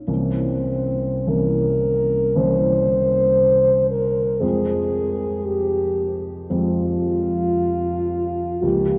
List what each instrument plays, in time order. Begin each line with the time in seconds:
0.07 grand piano C2 E3 A#3 C#4, french horn C4
1.27 grand piano C2 E3 A#3 C#4, french horn A#4
2.35 grand piano C2 E3 A#3 C#4, french horn C5
3.90 french horn A#4
4.40 grand piano F2 F3 G#3 C4, french horn G#4
5.45 french horn G4
6.50 grand piano F2 F3 G#3 C4, french horn F4
8.62 grand piano C#2 F3 A#3, french horn G4